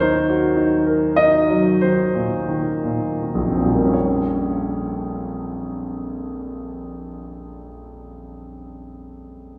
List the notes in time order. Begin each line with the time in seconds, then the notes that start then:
Already playing: D#2 A#2 D#3 F#3 D#4 A#4 C#5
0.00 D#4 C5
0.30 F#4
0.57 D#4
0.86 A#4
1.16 D#4 D#5
1.50 F#3
1.81 D#3 C5
2.15 A#2
2.48 D#3
2.84 A#2
3.22 D#3
3.35 A#1
3.45 F2
3.55 F3
3.60 A#2
3.65 G3
3.75 A#3
3.85 C#4
3.94 C#5